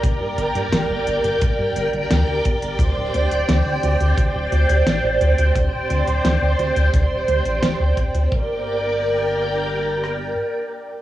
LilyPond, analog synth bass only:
\new Staff \with { instrumentName = "Analog synth bass" } { \clef bass \time 4/4 \key g \minor \tempo 4 = 87 g,,16 g,16 g,,16 g,16 g,,16 g,,16 g,,16 g,,16 g,,16 g,16 g,,16 g,,16 d,16 d,16 g,,16 g,,16 | d,16 d,,16 d,16 d,,16 d,16 d,16 d,16 d,16 d,16 d,,16 d,16 d,16 a,,16 a,,16 d,16 d,16 | d,16 d,,16 d,16 d,,16 d,16 d,16 d,16 d,16 d,16 d,,16 d,16 a,,16 d,,16 d,16 d,,16 d,16 | g,,2. r4 | }